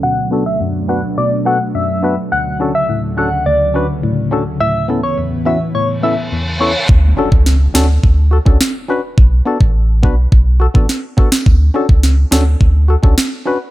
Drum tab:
SD |----------------|----------------|----------------|----o-o-----o---|
BD |----------------|----------------|----------------|o--o----o--o----|

SD |------------o--o|----o-o-----o---|
BD |o--o--o-o--o--o-|o--o----o--o----|